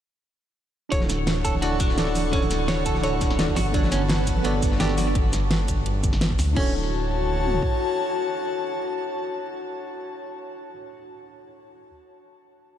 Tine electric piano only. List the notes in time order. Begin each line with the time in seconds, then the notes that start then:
0.89 D4 E4 F#4 A4
0.94 C#5
1.61 D4 E4 F#4 A4 D5
1.96 D4 E4 F#4 A4 D5
2.30 D3 E4 F#4 A4
2.35 C#5
3.02 D4 E4 F#4 A4
3.38 D4 E4 F#4 A4 D5
3.72 D3 B3 F#4 A4
3.76 C#5
4.43 B3 D4 F#4 A4 D5
4.79 B3 D4 F#4 A4 D5
6.53 D4 E4 F#4
6.58 A4 C#5